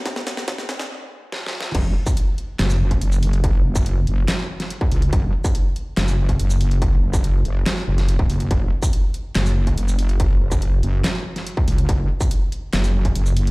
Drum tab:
CC |------------------------------------------------|x-----------------------------------------------|------------------------------------------------|------------------------------------------------|
HH |x-----------x-----x-----------------------------|x-----------x-----x-----x--------x--x-----o--x--|x-----------x-----x-----x--------x--x-----o--x--|x-----------x-----x-----x--------x--x-----o--x--|
SH |------x-----------------------------------------|---------x-----------------x-----------x--------|---------x--------------------------------------|---------x-----------------x-----------x--------|
CP |------------------------------------------------|------------------------x-----------------------|------------------------x-----------------------|------------------------x-----------------------|
SD |o--o--o--o--o--o--o--o--------------o---o---o---|------------------------o-----------------------|------------------------o--------o--------------|------------------------o-----------------------|
BD |o-----------o-----------------------------------|o--------o-----------------------o--------------|o--------o-----------------------------o--------|o--------o-----------------------o--------------|

CC |------------------------------------------------|------------------------------------------------|------------------------------------------------|------------------------------------------------|
HH |x-----------x-----x-----x--------x--x-----o--x--|x-----------x-----x-----x--------x--x-----o--x--|x-----------x-----x-----x--------x--x-----o--x--|x-----------x-----x-----x--------x--x-----o--x--|
SH |---------x--------------------------------------|---------x-----------------x-----------x--------|---------x--------------------------------------|---------x-----------------x-----------x--------|
CP |------------------------x-----------------------|------------------------x-----------------------|------------------------x-----------------------|------------------------x-----------------------|
SD |------------------------o--------o--------------|------------------------o-----------------------|------------------------o--------o--------------|------------------------o-----------------------|
BD |o--------o-----------------------------o--------|o--------o-----------------------o--------------|o--------o-----------------------------o--------|o--------o-----------------------o--------------|